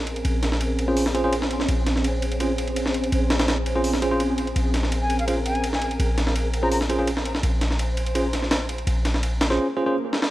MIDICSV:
0, 0, Header, 1, 7, 480
1, 0, Start_track
1, 0, Key_signature, -5, "minor"
1, 0, Tempo, 359281
1, 331, Time_signature, 4, 2, 24, 8
1, 13767, End_track
2, 0, Start_track
2, 0, Title_t, "Flute"
2, 0, Program_c, 0, 73
2, 6694, Note_on_c, 0, 80, 80
2, 6910, Note_off_c, 0, 80, 0
2, 6938, Note_on_c, 0, 77, 85
2, 7011, Note_off_c, 0, 77, 0
2, 7056, Note_on_c, 0, 77, 68
2, 7134, Note_off_c, 0, 77, 0
2, 7295, Note_on_c, 0, 80, 86
2, 7583, Note_off_c, 0, 80, 0
2, 7658, Note_on_c, 0, 80, 81
2, 7944, Note_off_c, 0, 80, 0
2, 8859, Note_on_c, 0, 82, 82
2, 8932, Note_off_c, 0, 82, 0
2, 8978, Note_on_c, 0, 82, 70
2, 9054, Note_off_c, 0, 82, 0
2, 13767, End_track
3, 0, Start_track
3, 0, Title_t, "String machine"
3, 0, Program_c, 1, 50
3, 0, Note_on_c, 1, 60, 79
3, 0, Note_on_c, 1, 61, 70
3, 0, Note_on_c, 1, 68, 70
3, 0, Note_on_c, 1, 70, 85
3, 2240, Note_off_c, 1, 70, 0
3, 2250, Note_on_c, 1, 72, 90
3, 6077, Note_off_c, 1, 72, 0
3, 6092, Note_on_c, 1, 70, 84
3, 9918, Note_off_c, 1, 70, 0
3, 9933, Note_on_c, 1, 72, 87
3, 12760, Note_off_c, 1, 68, 0
3, 12761, Note_off_c, 1, 60, 0
3, 12761, Note_off_c, 1, 61, 0
3, 12808, Note_off_c, 1, 72, 0
3, 13767, End_track
4, 0, Start_track
4, 0, Title_t, "Tine electric piano"
4, 0, Program_c, 2, 4
4, 1176, Note_on_c, 2, 61, 85
4, 1176, Note_on_c, 2, 65, 78
4, 1176, Note_on_c, 2, 68, 75
4, 1176, Note_on_c, 2, 72, 88
4, 1387, Note_off_c, 2, 61, 0
4, 1388, Note_off_c, 2, 65, 0
4, 1388, Note_off_c, 2, 68, 0
4, 1388, Note_off_c, 2, 72, 0
4, 1530, Note_on_c, 2, 68, 75
4, 1531, Note_on_c, 2, 61, 81
4, 1531, Note_on_c, 2, 65, 73
4, 1531, Note_on_c, 2, 72, 82
4, 1625, Note_off_c, 2, 68, 0
4, 1626, Note_off_c, 2, 61, 0
4, 1626, Note_off_c, 2, 65, 0
4, 1626, Note_off_c, 2, 72, 0
4, 1656, Note_on_c, 2, 68, 71
4, 1656, Note_on_c, 2, 72, 85
4, 1657, Note_on_c, 2, 61, 73
4, 1657, Note_on_c, 2, 65, 69
4, 1785, Note_off_c, 2, 65, 0
4, 1785, Note_off_c, 2, 68, 0
4, 1785, Note_off_c, 2, 72, 0
4, 1786, Note_off_c, 2, 61, 0
4, 3212, Note_on_c, 2, 61, 70
4, 3212, Note_on_c, 2, 65, 61
4, 3212, Note_on_c, 2, 68, 66
4, 3212, Note_on_c, 2, 72, 75
4, 3348, Note_off_c, 2, 61, 0
4, 3348, Note_off_c, 2, 65, 0
4, 3348, Note_off_c, 2, 68, 0
4, 3349, Note_off_c, 2, 72, 0
4, 5017, Note_on_c, 2, 61, 81
4, 5017, Note_on_c, 2, 72, 89
4, 5018, Note_on_c, 2, 65, 79
4, 5018, Note_on_c, 2, 68, 76
4, 5228, Note_off_c, 2, 61, 0
4, 5228, Note_off_c, 2, 65, 0
4, 5228, Note_off_c, 2, 68, 0
4, 5228, Note_off_c, 2, 72, 0
4, 5372, Note_on_c, 2, 61, 81
4, 5372, Note_on_c, 2, 65, 70
4, 5372, Note_on_c, 2, 68, 69
4, 5372, Note_on_c, 2, 72, 84
4, 5466, Note_off_c, 2, 61, 0
4, 5466, Note_off_c, 2, 65, 0
4, 5466, Note_off_c, 2, 72, 0
4, 5467, Note_off_c, 2, 68, 0
4, 5495, Note_on_c, 2, 61, 72
4, 5495, Note_on_c, 2, 65, 69
4, 5495, Note_on_c, 2, 68, 65
4, 5496, Note_on_c, 2, 72, 85
4, 5625, Note_off_c, 2, 61, 0
4, 5625, Note_off_c, 2, 65, 0
4, 5625, Note_off_c, 2, 68, 0
4, 5625, Note_off_c, 2, 72, 0
4, 7051, Note_on_c, 2, 68, 65
4, 7052, Note_on_c, 2, 61, 69
4, 7052, Note_on_c, 2, 65, 65
4, 7052, Note_on_c, 2, 72, 75
4, 7188, Note_off_c, 2, 61, 0
4, 7188, Note_off_c, 2, 68, 0
4, 7188, Note_off_c, 2, 72, 0
4, 7189, Note_off_c, 2, 65, 0
4, 8855, Note_on_c, 2, 65, 79
4, 8856, Note_on_c, 2, 61, 85
4, 8856, Note_on_c, 2, 68, 79
4, 8856, Note_on_c, 2, 72, 91
4, 9067, Note_off_c, 2, 61, 0
4, 9067, Note_off_c, 2, 65, 0
4, 9068, Note_off_c, 2, 68, 0
4, 9068, Note_off_c, 2, 72, 0
4, 9211, Note_on_c, 2, 61, 77
4, 9211, Note_on_c, 2, 65, 73
4, 9211, Note_on_c, 2, 68, 72
4, 9212, Note_on_c, 2, 72, 85
4, 9306, Note_off_c, 2, 61, 0
4, 9306, Note_off_c, 2, 65, 0
4, 9306, Note_off_c, 2, 68, 0
4, 9306, Note_off_c, 2, 72, 0
4, 9334, Note_on_c, 2, 68, 70
4, 9334, Note_on_c, 2, 72, 84
4, 9335, Note_on_c, 2, 61, 75
4, 9335, Note_on_c, 2, 65, 72
4, 9464, Note_off_c, 2, 68, 0
4, 9464, Note_off_c, 2, 72, 0
4, 9465, Note_off_c, 2, 61, 0
4, 9465, Note_off_c, 2, 65, 0
4, 10891, Note_on_c, 2, 61, 70
4, 10891, Note_on_c, 2, 65, 67
4, 10891, Note_on_c, 2, 68, 69
4, 10891, Note_on_c, 2, 72, 80
4, 11028, Note_off_c, 2, 61, 0
4, 11028, Note_off_c, 2, 65, 0
4, 11028, Note_off_c, 2, 68, 0
4, 11028, Note_off_c, 2, 72, 0
4, 12695, Note_on_c, 2, 68, 82
4, 12696, Note_on_c, 2, 61, 90
4, 12696, Note_on_c, 2, 65, 80
4, 12696, Note_on_c, 2, 72, 99
4, 12907, Note_off_c, 2, 68, 0
4, 12908, Note_off_c, 2, 61, 0
4, 12908, Note_off_c, 2, 65, 0
4, 12908, Note_off_c, 2, 72, 0
4, 13050, Note_on_c, 2, 65, 77
4, 13050, Note_on_c, 2, 68, 71
4, 13050, Note_on_c, 2, 72, 90
4, 13051, Note_on_c, 2, 61, 78
4, 13145, Note_off_c, 2, 65, 0
4, 13145, Note_off_c, 2, 68, 0
4, 13145, Note_off_c, 2, 72, 0
4, 13146, Note_off_c, 2, 61, 0
4, 13176, Note_on_c, 2, 61, 81
4, 13176, Note_on_c, 2, 72, 85
4, 13177, Note_on_c, 2, 65, 71
4, 13177, Note_on_c, 2, 68, 71
4, 13305, Note_off_c, 2, 61, 0
4, 13305, Note_off_c, 2, 68, 0
4, 13305, Note_off_c, 2, 72, 0
4, 13306, Note_off_c, 2, 65, 0
4, 13767, End_track
5, 0, Start_track
5, 0, Title_t, "808-style bass"
5, 0, Program_c, 3, 38
5, 0, Note_on_c, 3, 34, 85
5, 308, Note_off_c, 3, 34, 0
5, 331, Note_on_c, 3, 34, 83
5, 2228, Note_off_c, 3, 34, 0
5, 2252, Note_on_c, 3, 34, 80
5, 4149, Note_off_c, 3, 34, 0
5, 4171, Note_on_c, 3, 34, 83
5, 6068, Note_off_c, 3, 34, 0
5, 6090, Note_on_c, 3, 34, 83
5, 7988, Note_off_c, 3, 34, 0
5, 8009, Note_on_c, 3, 34, 86
5, 9908, Note_off_c, 3, 34, 0
5, 9930, Note_on_c, 3, 34, 85
5, 11828, Note_off_c, 3, 34, 0
5, 11849, Note_on_c, 3, 34, 81
5, 12811, Note_off_c, 3, 34, 0
5, 13767, End_track
6, 0, Start_track
6, 0, Title_t, "Swell"
6, 0, Program_c, 4, 103
6, 12811, Note_on_c, 4, 60, 71
6, 13767, Note_off_c, 4, 60, 0
6, 13767, End_track
7, 0, Start_track
7, 0, Title_t, "Drums"
7, 91, Note_on_c, 9, 51, 60
7, 216, Note_off_c, 9, 51, 0
7, 216, Note_on_c, 9, 51, 38
7, 331, Note_off_c, 9, 51, 0
7, 331, Note_on_c, 9, 51, 80
7, 465, Note_off_c, 9, 51, 0
7, 570, Note_on_c, 9, 38, 41
7, 570, Note_on_c, 9, 51, 62
7, 696, Note_off_c, 9, 38, 0
7, 696, Note_on_c, 9, 38, 46
7, 704, Note_off_c, 9, 51, 0
7, 810, Note_on_c, 9, 51, 77
7, 829, Note_off_c, 9, 38, 0
7, 944, Note_off_c, 9, 51, 0
7, 1051, Note_on_c, 9, 51, 64
7, 1185, Note_off_c, 9, 51, 0
7, 1291, Note_on_c, 9, 46, 76
7, 1416, Note_on_c, 9, 38, 46
7, 1425, Note_off_c, 9, 46, 0
7, 1531, Note_on_c, 9, 51, 62
7, 1549, Note_off_c, 9, 38, 0
7, 1665, Note_off_c, 9, 51, 0
7, 1771, Note_on_c, 9, 51, 83
7, 1897, Note_on_c, 9, 38, 45
7, 1904, Note_off_c, 9, 51, 0
7, 2012, Note_on_c, 9, 51, 59
7, 2030, Note_off_c, 9, 38, 0
7, 2135, Note_on_c, 9, 38, 42
7, 2146, Note_off_c, 9, 51, 0
7, 2251, Note_on_c, 9, 51, 80
7, 2269, Note_off_c, 9, 38, 0
7, 2384, Note_off_c, 9, 51, 0
7, 2492, Note_on_c, 9, 38, 36
7, 2492, Note_on_c, 9, 51, 63
7, 2616, Note_off_c, 9, 38, 0
7, 2616, Note_on_c, 9, 38, 32
7, 2625, Note_off_c, 9, 51, 0
7, 2731, Note_on_c, 9, 51, 80
7, 2749, Note_off_c, 9, 38, 0
7, 2864, Note_off_c, 9, 51, 0
7, 2970, Note_on_c, 9, 51, 65
7, 3094, Note_off_c, 9, 51, 0
7, 3094, Note_on_c, 9, 51, 42
7, 3209, Note_off_c, 9, 51, 0
7, 3209, Note_on_c, 9, 51, 80
7, 3343, Note_off_c, 9, 51, 0
7, 3451, Note_on_c, 9, 51, 62
7, 3574, Note_off_c, 9, 51, 0
7, 3574, Note_on_c, 9, 51, 38
7, 3692, Note_off_c, 9, 51, 0
7, 3692, Note_on_c, 9, 51, 84
7, 3817, Note_on_c, 9, 38, 41
7, 3825, Note_off_c, 9, 51, 0
7, 3932, Note_on_c, 9, 51, 58
7, 3950, Note_off_c, 9, 38, 0
7, 4056, Note_off_c, 9, 51, 0
7, 4056, Note_on_c, 9, 51, 39
7, 4172, Note_off_c, 9, 51, 0
7, 4172, Note_on_c, 9, 51, 77
7, 4306, Note_off_c, 9, 51, 0
7, 4411, Note_on_c, 9, 38, 96
7, 4411, Note_on_c, 9, 51, 74
7, 4535, Note_off_c, 9, 38, 0
7, 4535, Note_off_c, 9, 51, 0
7, 4535, Note_on_c, 9, 38, 94
7, 4535, Note_on_c, 9, 51, 72
7, 4651, Note_off_c, 9, 38, 0
7, 4651, Note_off_c, 9, 51, 0
7, 4651, Note_on_c, 9, 38, 97
7, 4651, Note_on_c, 9, 51, 73
7, 4785, Note_off_c, 9, 38, 0
7, 4785, Note_off_c, 9, 51, 0
7, 4891, Note_on_c, 9, 51, 67
7, 5024, Note_off_c, 9, 51, 0
7, 5131, Note_on_c, 9, 46, 75
7, 5256, Note_on_c, 9, 38, 46
7, 5265, Note_off_c, 9, 46, 0
7, 5372, Note_on_c, 9, 51, 61
7, 5390, Note_off_c, 9, 38, 0
7, 5506, Note_off_c, 9, 51, 0
7, 5611, Note_on_c, 9, 51, 72
7, 5744, Note_off_c, 9, 51, 0
7, 5850, Note_on_c, 9, 51, 53
7, 5976, Note_off_c, 9, 51, 0
7, 5976, Note_on_c, 9, 51, 36
7, 6091, Note_off_c, 9, 51, 0
7, 6091, Note_on_c, 9, 51, 80
7, 6225, Note_off_c, 9, 51, 0
7, 6331, Note_on_c, 9, 38, 36
7, 6331, Note_on_c, 9, 51, 67
7, 6456, Note_off_c, 9, 38, 0
7, 6456, Note_on_c, 9, 38, 34
7, 6465, Note_off_c, 9, 51, 0
7, 6572, Note_on_c, 9, 51, 82
7, 6589, Note_off_c, 9, 38, 0
7, 6706, Note_off_c, 9, 51, 0
7, 6811, Note_on_c, 9, 51, 68
7, 6934, Note_off_c, 9, 51, 0
7, 6934, Note_on_c, 9, 51, 43
7, 7050, Note_off_c, 9, 51, 0
7, 7050, Note_on_c, 9, 51, 85
7, 7184, Note_off_c, 9, 51, 0
7, 7290, Note_on_c, 9, 51, 62
7, 7415, Note_off_c, 9, 51, 0
7, 7415, Note_on_c, 9, 51, 38
7, 7531, Note_off_c, 9, 51, 0
7, 7531, Note_on_c, 9, 51, 86
7, 7655, Note_on_c, 9, 38, 41
7, 7664, Note_off_c, 9, 51, 0
7, 7770, Note_on_c, 9, 51, 58
7, 7788, Note_off_c, 9, 38, 0
7, 7896, Note_off_c, 9, 51, 0
7, 7896, Note_on_c, 9, 51, 38
7, 8012, Note_off_c, 9, 51, 0
7, 8012, Note_on_c, 9, 51, 80
7, 8145, Note_off_c, 9, 51, 0
7, 8252, Note_on_c, 9, 38, 40
7, 8252, Note_on_c, 9, 51, 67
7, 8376, Note_off_c, 9, 38, 0
7, 8376, Note_on_c, 9, 38, 48
7, 8386, Note_off_c, 9, 51, 0
7, 8491, Note_on_c, 9, 51, 81
7, 8509, Note_off_c, 9, 38, 0
7, 8625, Note_off_c, 9, 51, 0
7, 8731, Note_on_c, 9, 51, 68
7, 8865, Note_off_c, 9, 51, 0
7, 8971, Note_on_c, 9, 46, 74
7, 9095, Note_on_c, 9, 38, 45
7, 9105, Note_off_c, 9, 46, 0
7, 9212, Note_on_c, 9, 51, 65
7, 9229, Note_off_c, 9, 38, 0
7, 9346, Note_off_c, 9, 51, 0
7, 9451, Note_on_c, 9, 51, 81
7, 9576, Note_on_c, 9, 38, 43
7, 9585, Note_off_c, 9, 51, 0
7, 9692, Note_on_c, 9, 51, 61
7, 9710, Note_off_c, 9, 38, 0
7, 9815, Note_on_c, 9, 38, 42
7, 9825, Note_off_c, 9, 51, 0
7, 9930, Note_on_c, 9, 51, 81
7, 9949, Note_off_c, 9, 38, 0
7, 10064, Note_off_c, 9, 51, 0
7, 10171, Note_on_c, 9, 38, 38
7, 10171, Note_on_c, 9, 51, 63
7, 10295, Note_off_c, 9, 38, 0
7, 10295, Note_on_c, 9, 38, 34
7, 10305, Note_off_c, 9, 51, 0
7, 10411, Note_on_c, 9, 51, 80
7, 10429, Note_off_c, 9, 38, 0
7, 10545, Note_off_c, 9, 51, 0
7, 10650, Note_on_c, 9, 51, 65
7, 10774, Note_off_c, 9, 51, 0
7, 10774, Note_on_c, 9, 51, 42
7, 10890, Note_off_c, 9, 51, 0
7, 10890, Note_on_c, 9, 51, 82
7, 11024, Note_off_c, 9, 51, 0
7, 11131, Note_on_c, 9, 38, 33
7, 11131, Note_on_c, 9, 51, 60
7, 11255, Note_off_c, 9, 38, 0
7, 11255, Note_on_c, 9, 38, 30
7, 11265, Note_off_c, 9, 51, 0
7, 11369, Note_off_c, 9, 38, 0
7, 11369, Note_on_c, 9, 38, 99
7, 11369, Note_on_c, 9, 51, 78
7, 11503, Note_off_c, 9, 38, 0
7, 11503, Note_off_c, 9, 51, 0
7, 11610, Note_on_c, 9, 51, 57
7, 11734, Note_off_c, 9, 51, 0
7, 11734, Note_on_c, 9, 51, 36
7, 11851, Note_off_c, 9, 51, 0
7, 11851, Note_on_c, 9, 51, 82
7, 11985, Note_off_c, 9, 51, 0
7, 12091, Note_on_c, 9, 38, 39
7, 12091, Note_on_c, 9, 51, 64
7, 12215, Note_off_c, 9, 38, 0
7, 12215, Note_on_c, 9, 38, 47
7, 12225, Note_off_c, 9, 51, 0
7, 12331, Note_on_c, 9, 51, 86
7, 12349, Note_off_c, 9, 38, 0
7, 12464, Note_off_c, 9, 51, 0
7, 12572, Note_on_c, 9, 38, 98
7, 12572, Note_on_c, 9, 51, 77
7, 12697, Note_off_c, 9, 38, 0
7, 12697, Note_on_c, 9, 38, 40
7, 12705, Note_off_c, 9, 51, 0
7, 12831, Note_off_c, 9, 38, 0
7, 13532, Note_on_c, 9, 38, 52
7, 13657, Note_off_c, 9, 38, 0
7, 13657, Note_on_c, 9, 38, 70
7, 13767, Note_off_c, 9, 38, 0
7, 13767, End_track
0, 0, End_of_file